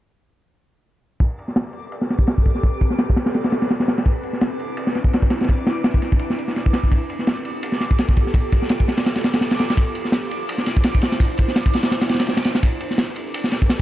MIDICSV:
0, 0, Header, 1, 4, 480
1, 0, Start_track
1, 0, Key_signature, 0, "minor"
1, 0, Tempo, 357143
1, 1615, Time_signature, 4, 2, 24, 8
1, 18569, End_track
2, 0, Start_track
2, 0, Title_t, "Synth texture"
2, 0, Program_c, 0, 99
2, 1623, Note_on_c, 0, 86, 75
2, 16958, Note_off_c, 0, 86, 0
2, 16974, Note_on_c, 0, 86, 79
2, 18569, Note_off_c, 0, 86, 0
2, 18569, End_track
3, 0, Start_track
3, 0, Title_t, "Ambient pad"
3, 0, Program_c, 1, 92
3, 1615, Note_on_c, 1, 67, 65
3, 1616, Note_on_c, 1, 69, 68
3, 1616, Note_on_c, 1, 71, 81
3, 1618, Note_on_c, 1, 60, 72
3, 5417, Note_off_c, 1, 67, 0
3, 5417, Note_off_c, 1, 69, 0
3, 5457, Note_on_c, 1, 62, 64
3, 5458, Note_on_c, 1, 64, 68
3, 9242, Note_off_c, 1, 71, 0
3, 9243, Note_off_c, 1, 60, 0
3, 9258, Note_off_c, 1, 62, 0
3, 9258, Note_off_c, 1, 64, 0
3, 9293, Note_on_c, 1, 59, 73
3, 9294, Note_on_c, 1, 67, 66
3, 9295, Note_on_c, 1, 65, 65
3, 9295, Note_on_c, 1, 69, 82
3, 13096, Note_off_c, 1, 59, 0
3, 13097, Note_off_c, 1, 67, 0
3, 13097, Note_off_c, 1, 69, 0
3, 13135, Note_on_c, 1, 72, 81
3, 13137, Note_on_c, 1, 64, 70
3, 13138, Note_on_c, 1, 62, 69
3, 16921, Note_off_c, 1, 65, 0
3, 16937, Note_off_c, 1, 72, 0
3, 16938, Note_off_c, 1, 62, 0
3, 16938, Note_off_c, 1, 64, 0
3, 16975, Note_on_c, 1, 60, 76
3, 16977, Note_on_c, 1, 67, 67
3, 16977, Note_on_c, 1, 71, 80
3, 16979, Note_on_c, 1, 69, 69
3, 18569, Note_off_c, 1, 60, 0
3, 18569, Note_off_c, 1, 67, 0
3, 18569, Note_off_c, 1, 69, 0
3, 18569, Note_off_c, 1, 71, 0
3, 18569, End_track
4, 0, Start_track
4, 0, Title_t, "Drums"
4, 1615, Note_on_c, 9, 36, 97
4, 1620, Note_on_c, 9, 51, 74
4, 1750, Note_off_c, 9, 36, 0
4, 1755, Note_off_c, 9, 51, 0
4, 1863, Note_on_c, 9, 51, 57
4, 1988, Note_on_c, 9, 38, 31
4, 1998, Note_off_c, 9, 51, 0
4, 2096, Note_off_c, 9, 38, 0
4, 2096, Note_on_c, 9, 38, 95
4, 2102, Note_on_c, 9, 51, 81
4, 2230, Note_off_c, 9, 38, 0
4, 2236, Note_off_c, 9, 51, 0
4, 2323, Note_on_c, 9, 51, 58
4, 2458, Note_off_c, 9, 51, 0
4, 2579, Note_on_c, 9, 51, 78
4, 2708, Note_on_c, 9, 38, 48
4, 2714, Note_off_c, 9, 51, 0
4, 2826, Note_off_c, 9, 38, 0
4, 2826, Note_on_c, 9, 38, 45
4, 2827, Note_on_c, 9, 51, 57
4, 2938, Note_on_c, 9, 36, 80
4, 2960, Note_off_c, 9, 38, 0
4, 2961, Note_off_c, 9, 51, 0
4, 3050, Note_on_c, 9, 51, 77
4, 3060, Note_on_c, 9, 38, 102
4, 3073, Note_off_c, 9, 36, 0
4, 3184, Note_off_c, 9, 51, 0
4, 3194, Note_off_c, 9, 38, 0
4, 3197, Note_on_c, 9, 36, 83
4, 3297, Note_on_c, 9, 51, 64
4, 3303, Note_off_c, 9, 36, 0
4, 3303, Note_on_c, 9, 36, 83
4, 3428, Note_on_c, 9, 38, 42
4, 3431, Note_off_c, 9, 51, 0
4, 3438, Note_off_c, 9, 36, 0
4, 3537, Note_on_c, 9, 51, 71
4, 3540, Note_on_c, 9, 36, 94
4, 3563, Note_off_c, 9, 38, 0
4, 3671, Note_off_c, 9, 51, 0
4, 3674, Note_off_c, 9, 36, 0
4, 3775, Note_on_c, 9, 51, 62
4, 3779, Note_on_c, 9, 36, 72
4, 3903, Note_on_c, 9, 38, 59
4, 3910, Note_off_c, 9, 51, 0
4, 3914, Note_off_c, 9, 36, 0
4, 4012, Note_off_c, 9, 38, 0
4, 4012, Note_on_c, 9, 38, 94
4, 4014, Note_on_c, 9, 51, 76
4, 4146, Note_off_c, 9, 38, 0
4, 4149, Note_off_c, 9, 51, 0
4, 4161, Note_on_c, 9, 36, 84
4, 4253, Note_on_c, 9, 38, 92
4, 4262, Note_on_c, 9, 51, 69
4, 4296, Note_off_c, 9, 36, 0
4, 4381, Note_off_c, 9, 38, 0
4, 4381, Note_on_c, 9, 38, 94
4, 4391, Note_off_c, 9, 51, 0
4, 4391, Note_on_c, 9, 51, 69
4, 4492, Note_off_c, 9, 51, 0
4, 4492, Note_on_c, 9, 51, 63
4, 4500, Note_off_c, 9, 38, 0
4, 4500, Note_on_c, 9, 38, 83
4, 4624, Note_off_c, 9, 51, 0
4, 4624, Note_on_c, 9, 51, 71
4, 4628, Note_off_c, 9, 38, 0
4, 4628, Note_on_c, 9, 38, 84
4, 4730, Note_off_c, 9, 51, 0
4, 4730, Note_on_c, 9, 51, 76
4, 4734, Note_off_c, 9, 38, 0
4, 4734, Note_on_c, 9, 38, 90
4, 4862, Note_off_c, 9, 51, 0
4, 4862, Note_on_c, 9, 51, 65
4, 4863, Note_off_c, 9, 38, 0
4, 4863, Note_on_c, 9, 38, 82
4, 4972, Note_off_c, 9, 51, 0
4, 4972, Note_on_c, 9, 51, 64
4, 4979, Note_off_c, 9, 38, 0
4, 4979, Note_on_c, 9, 38, 94
4, 5105, Note_off_c, 9, 38, 0
4, 5105, Note_on_c, 9, 38, 83
4, 5106, Note_off_c, 9, 51, 0
4, 5115, Note_on_c, 9, 51, 70
4, 5215, Note_off_c, 9, 38, 0
4, 5215, Note_on_c, 9, 38, 98
4, 5222, Note_off_c, 9, 51, 0
4, 5222, Note_on_c, 9, 51, 71
4, 5346, Note_off_c, 9, 51, 0
4, 5346, Note_on_c, 9, 51, 68
4, 5349, Note_off_c, 9, 38, 0
4, 5349, Note_on_c, 9, 38, 86
4, 5454, Note_on_c, 9, 36, 101
4, 5455, Note_off_c, 9, 51, 0
4, 5455, Note_on_c, 9, 51, 77
4, 5484, Note_off_c, 9, 38, 0
4, 5589, Note_off_c, 9, 36, 0
4, 5589, Note_off_c, 9, 51, 0
4, 5690, Note_on_c, 9, 51, 58
4, 5819, Note_on_c, 9, 38, 34
4, 5824, Note_off_c, 9, 51, 0
4, 5929, Note_on_c, 9, 51, 81
4, 5933, Note_off_c, 9, 38, 0
4, 5933, Note_on_c, 9, 38, 102
4, 6063, Note_off_c, 9, 51, 0
4, 6068, Note_off_c, 9, 38, 0
4, 6174, Note_on_c, 9, 51, 59
4, 6309, Note_off_c, 9, 51, 0
4, 6409, Note_on_c, 9, 51, 79
4, 6544, Note_off_c, 9, 51, 0
4, 6544, Note_on_c, 9, 38, 52
4, 6651, Note_on_c, 9, 51, 61
4, 6656, Note_off_c, 9, 38, 0
4, 6656, Note_on_c, 9, 38, 48
4, 6779, Note_on_c, 9, 36, 80
4, 6786, Note_off_c, 9, 51, 0
4, 6790, Note_off_c, 9, 38, 0
4, 6899, Note_on_c, 9, 51, 73
4, 6909, Note_on_c, 9, 38, 93
4, 6913, Note_off_c, 9, 36, 0
4, 7021, Note_on_c, 9, 36, 83
4, 7033, Note_off_c, 9, 51, 0
4, 7043, Note_off_c, 9, 38, 0
4, 7125, Note_on_c, 9, 51, 71
4, 7127, Note_on_c, 9, 38, 90
4, 7155, Note_off_c, 9, 36, 0
4, 7260, Note_off_c, 9, 51, 0
4, 7262, Note_off_c, 9, 38, 0
4, 7264, Note_on_c, 9, 51, 57
4, 7272, Note_on_c, 9, 38, 79
4, 7318, Note_off_c, 9, 51, 0
4, 7318, Note_on_c, 9, 51, 55
4, 7325, Note_off_c, 9, 38, 0
4, 7325, Note_on_c, 9, 38, 68
4, 7377, Note_on_c, 9, 36, 95
4, 7381, Note_off_c, 9, 51, 0
4, 7381, Note_on_c, 9, 51, 74
4, 7460, Note_off_c, 9, 38, 0
4, 7512, Note_off_c, 9, 36, 0
4, 7515, Note_off_c, 9, 51, 0
4, 7615, Note_on_c, 9, 38, 90
4, 7619, Note_on_c, 9, 51, 67
4, 7749, Note_off_c, 9, 38, 0
4, 7753, Note_off_c, 9, 51, 0
4, 7851, Note_on_c, 9, 38, 107
4, 7851, Note_on_c, 9, 51, 75
4, 7985, Note_off_c, 9, 51, 0
4, 7985, Note_on_c, 9, 36, 73
4, 7986, Note_off_c, 9, 38, 0
4, 8089, Note_on_c, 9, 51, 64
4, 8094, Note_on_c, 9, 38, 38
4, 8119, Note_off_c, 9, 36, 0
4, 8224, Note_off_c, 9, 51, 0
4, 8229, Note_off_c, 9, 38, 0
4, 8229, Note_on_c, 9, 36, 85
4, 8323, Note_on_c, 9, 51, 78
4, 8363, Note_off_c, 9, 36, 0
4, 8458, Note_off_c, 9, 51, 0
4, 8468, Note_on_c, 9, 38, 49
4, 8581, Note_on_c, 9, 51, 63
4, 8603, Note_off_c, 9, 38, 0
4, 8706, Note_on_c, 9, 38, 39
4, 8715, Note_off_c, 9, 51, 0
4, 8816, Note_on_c, 9, 51, 54
4, 8821, Note_off_c, 9, 38, 0
4, 8821, Note_on_c, 9, 38, 39
4, 8950, Note_off_c, 9, 51, 0
4, 8953, Note_on_c, 9, 36, 77
4, 8955, Note_off_c, 9, 38, 0
4, 9050, Note_on_c, 9, 38, 89
4, 9053, Note_on_c, 9, 51, 69
4, 9087, Note_off_c, 9, 36, 0
4, 9184, Note_off_c, 9, 38, 0
4, 9185, Note_on_c, 9, 36, 65
4, 9187, Note_off_c, 9, 51, 0
4, 9295, Note_off_c, 9, 36, 0
4, 9295, Note_on_c, 9, 36, 95
4, 9301, Note_on_c, 9, 51, 77
4, 9429, Note_off_c, 9, 36, 0
4, 9435, Note_off_c, 9, 51, 0
4, 9536, Note_on_c, 9, 51, 56
4, 9664, Note_on_c, 9, 38, 34
4, 9670, Note_off_c, 9, 51, 0
4, 9769, Note_on_c, 9, 51, 76
4, 9775, Note_off_c, 9, 38, 0
4, 9775, Note_on_c, 9, 38, 97
4, 9904, Note_off_c, 9, 51, 0
4, 9909, Note_off_c, 9, 38, 0
4, 10011, Note_on_c, 9, 51, 58
4, 10146, Note_off_c, 9, 51, 0
4, 10252, Note_on_c, 9, 51, 83
4, 10378, Note_on_c, 9, 38, 51
4, 10386, Note_off_c, 9, 51, 0
4, 10489, Note_off_c, 9, 38, 0
4, 10489, Note_on_c, 9, 38, 48
4, 10499, Note_on_c, 9, 51, 63
4, 10624, Note_off_c, 9, 38, 0
4, 10629, Note_on_c, 9, 36, 86
4, 10633, Note_off_c, 9, 51, 0
4, 10730, Note_on_c, 9, 51, 73
4, 10739, Note_on_c, 9, 38, 93
4, 10763, Note_off_c, 9, 36, 0
4, 10865, Note_off_c, 9, 51, 0
4, 10868, Note_on_c, 9, 36, 85
4, 10873, Note_off_c, 9, 38, 0
4, 10975, Note_on_c, 9, 51, 56
4, 10982, Note_off_c, 9, 36, 0
4, 10982, Note_on_c, 9, 36, 86
4, 11109, Note_off_c, 9, 51, 0
4, 11109, Note_on_c, 9, 38, 37
4, 11116, Note_off_c, 9, 36, 0
4, 11209, Note_on_c, 9, 36, 101
4, 11213, Note_on_c, 9, 51, 76
4, 11244, Note_off_c, 9, 38, 0
4, 11343, Note_off_c, 9, 36, 0
4, 11347, Note_off_c, 9, 51, 0
4, 11452, Note_on_c, 9, 51, 60
4, 11458, Note_on_c, 9, 36, 81
4, 11586, Note_off_c, 9, 51, 0
4, 11586, Note_on_c, 9, 38, 52
4, 11592, Note_off_c, 9, 36, 0
4, 11682, Note_on_c, 9, 51, 74
4, 11693, Note_off_c, 9, 38, 0
4, 11693, Note_on_c, 9, 38, 99
4, 11817, Note_off_c, 9, 51, 0
4, 11828, Note_off_c, 9, 38, 0
4, 11829, Note_on_c, 9, 36, 75
4, 11938, Note_on_c, 9, 38, 83
4, 11943, Note_on_c, 9, 51, 60
4, 11963, Note_off_c, 9, 36, 0
4, 12061, Note_off_c, 9, 38, 0
4, 12061, Note_on_c, 9, 38, 82
4, 12063, Note_off_c, 9, 51, 0
4, 12063, Note_on_c, 9, 51, 72
4, 12179, Note_off_c, 9, 51, 0
4, 12179, Note_on_c, 9, 51, 73
4, 12181, Note_off_c, 9, 38, 0
4, 12181, Note_on_c, 9, 38, 98
4, 12303, Note_off_c, 9, 51, 0
4, 12303, Note_on_c, 9, 51, 73
4, 12308, Note_off_c, 9, 38, 0
4, 12308, Note_on_c, 9, 38, 83
4, 12417, Note_off_c, 9, 51, 0
4, 12417, Note_on_c, 9, 51, 70
4, 12421, Note_off_c, 9, 38, 0
4, 12421, Note_on_c, 9, 38, 86
4, 12545, Note_off_c, 9, 51, 0
4, 12545, Note_on_c, 9, 51, 73
4, 12547, Note_off_c, 9, 38, 0
4, 12547, Note_on_c, 9, 38, 94
4, 12646, Note_off_c, 9, 38, 0
4, 12646, Note_on_c, 9, 38, 92
4, 12661, Note_off_c, 9, 51, 0
4, 12661, Note_on_c, 9, 51, 69
4, 12777, Note_off_c, 9, 51, 0
4, 12777, Note_on_c, 9, 51, 68
4, 12780, Note_off_c, 9, 38, 0
4, 12785, Note_on_c, 9, 38, 106
4, 12886, Note_off_c, 9, 51, 0
4, 12886, Note_on_c, 9, 51, 74
4, 12898, Note_off_c, 9, 38, 0
4, 12898, Note_on_c, 9, 38, 96
4, 13021, Note_off_c, 9, 51, 0
4, 13032, Note_off_c, 9, 38, 0
4, 13035, Note_on_c, 9, 51, 71
4, 13036, Note_on_c, 9, 38, 84
4, 13135, Note_on_c, 9, 36, 93
4, 13139, Note_off_c, 9, 51, 0
4, 13139, Note_on_c, 9, 51, 75
4, 13171, Note_off_c, 9, 38, 0
4, 13270, Note_off_c, 9, 36, 0
4, 13274, Note_off_c, 9, 51, 0
4, 13371, Note_on_c, 9, 51, 57
4, 13506, Note_off_c, 9, 51, 0
4, 13506, Note_on_c, 9, 38, 34
4, 13604, Note_off_c, 9, 38, 0
4, 13604, Note_on_c, 9, 38, 105
4, 13611, Note_on_c, 9, 51, 74
4, 13738, Note_off_c, 9, 38, 0
4, 13746, Note_off_c, 9, 51, 0
4, 13858, Note_on_c, 9, 51, 56
4, 13992, Note_off_c, 9, 51, 0
4, 14097, Note_on_c, 9, 51, 84
4, 14220, Note_on_c, 9, 38, 44
4, 14232, Note_off_c, 9, 51, 0
4, 14329, Note_on_c, 9, 51, 63
4, 14336, Note_off_c, 9, 38, 0
4, 14336, Note_on_c, 9, 38, 47
4, 14464, Note_off_c, 9, 51, 0
4, 14470, Note_off_c, 9, 38, 0
4, 14470, Note_on_c, 9, 36, 77
4, 14563, Note_on_c, 9, 51, 79
4, 14575, Note_on_c, 9, 38, 103
4, 14604, Note_off_c, 9, 36, 0
4, 14697, Note_off_c, 9, 51, 0
4, 14710, Note_off_c, 9, 38, 0
4, 14713, Note_on_c, 9, 36, 88
4, 14805, Note_on_c, 9, 51, 73
4, 14823, Note_on_c, 9, 38, 104
4, 14847, Note_off_c, 9, 36, 0
4, 14939, Note_off_c, 9, 51, 0
4, 14946, Note_off_c, 9, 38, 0
4, 14946, Note_on_c, 9, 38, 99
4, 14948, Note_on_c, 9, 51, 71
4, 15054, Note_on_c, 9, 36, 98
4, 15062, Note_off_c, 9, 51, 0
4, 15062, Note_on_c, 9, 51, 70
4, 15080, Note_off_c, 9, 38, 0
4, 15188, Note_off_c, 9, 36, 0
4, 15196, Note_off_c, 9, 51, 0
4, 15289, Note_on_c, 9, 51, 54
4, 15306, Note_on_c, 9, 36, 81
4, 15423, Note_off_c, 9, 51, 0
4, 15430, Note_on_c, 9, 38, 50
4, 15441, Note_off_c, 9, 36, 0
4, 15534, Note_off_c, 9, 38, 0
4, 15534, Note_on_c, 9, 38, 94
4, 15535, Note_on_c, 9, 51, 77
4, 15668, Note_off_c, 9, 38, 0
4, 15669, Note_off_c, 9, 51, 0
4, 15669, Note_on_c, 9, 36, 86
4, 15772, Note_on_c, 9, 51, 64
4, 15788, Note_on_c, 9, 38, 83
4, 15803, Note_off_c, 9, 36, 0
4, 15897, Note_off_c, 9, 51, 0
4, 15897, Note_on_c, 9, 51, 73
4, 15902, Note_off_c, 9, 38, 0
4, 15902, Note_on_c, 9, 38, 92
4, 16013, Note_off_c, 9, 38, 0
4, 16013, Note_on_c, 9, 38, 84
4, 16020, Note_off_c, 9, 51, 0
4, 16020, Note_on_c, 9, 51, 64
4, 16144, Note_off_c, 9, 51, 0
4, 16144, Note_on_c, 9, 51, 71
4, 16147, Note_off_c, 9, 38, 0
4, 16148, Note_on_c, 9, 38, 85
4, 16252, Note_off_c, 9, 51, 0
4, 16252, Note_on_c, 9, 51, 61
4, 16257, Note_off_c, 9, 38, 0
4, 16257, Note_on_c, 9, 38, 85
4, 16313, Note_off_c, 9, 51, 0
4, 16313, Note_on_c, 9, 51, 62
4, 16323, Note_off_c, 9, 38, 0
4, 16323, Note_on_c, 9, 38, 83
4, 16391, Note_off_c, 9, 51, 0
4, 16391, Note_on_c, 9, 51, 76
4, 16393, Note_off_c, 9, 38, 0
4, 16393, Note_on_c, 9, 38, 101
4, 16487, Note_off_c, 9, 51, 0
4, 16487, Note_on_c, 9, 51, 64
4, 16511, Note_off_c, 9, 38, 0
4, 16511, Note_on_c, 9, 38, 88
4, 16622, Note_off_c, 9, 51, 0
4, 16623, Note_off_c, 9, 38, 0
4, 16623, Note_on_c, 9, 38, 88
4, 16628, Note_on_c, 9, 51, 72
4, 16726, Note_off_c, 9, 51, 0
4, 16726, Note_on_c, 9, 51, 70
4, 16736, Note_off_c, 9, 38, 0
4, 16736, Note_on_c, 9, 38, 94
4, 16861, Note_off_c, 9, 51, 0
4, 16865, Note_off_c, 9, 38, 0
4, 16865, Note_on_c, 9, 38, 92
4, 16870, Note_on_c, 9, 51, 66
4, 16974, Note_off_c, 9, 51, 0
4, 16974, Note_on_c, 9, 51, 79
4, 16975, Note_on_c, 9, 36, 98
4, 17000, Note_off_c, 9, 38, 0
4, 17108, Note_off_c, 9, 51, 0
4, 17109, Note_off_c, 9, 36, 0
4, 17209, Note_on_c, 9, 51, 55
4, 17343, Note_off_c, 9, 51, 0
4, 17345, Note_on_c, 9, 38, 36
4, 17445, Note_off_c, 9, 38, 0
4, 17445, Note_on_c, 9, 38, 101
4, 17452, Note_on_c, 9, 51, 74
4, 17580, Note_off_c, 9, 38, 0
4, 17587, Note_off_c, 9, 51, 0
4, 17686, Note_on_c, 9, 51, 59
4, 17821, Note_off_c, 9, 51, 0
4, 17931, Note_on_c, 9, 51, 76
4, 18063, Note_on_c, 9, 38, 52
4, 18065, Note_off_c, 9, 51, 0
4, 18164, Note_on_c, 9, 51, 58
4, 18170, Note_off_c, 9, 38, 0
4, 18170, Note_on_c, 9, 38, 50
4, 18298, Note_off_c, 9, 51, 0
4, 18304, Note_off_c, 9, 38, 0
4, 18304, Note_on_c, 9, 36, 78
4, 18406, Note_on_c, 9, 38, 98
4, 18411, Note_on_c, 9, 51, 80
4, 18438, Note_off_c, 9, 36, 0
4, 18541, Note_off_c, 9, 38, 0
4, 18545, Note_off_c, 9, 51, 0
4, 18569, End_track
0, 0, End_of_file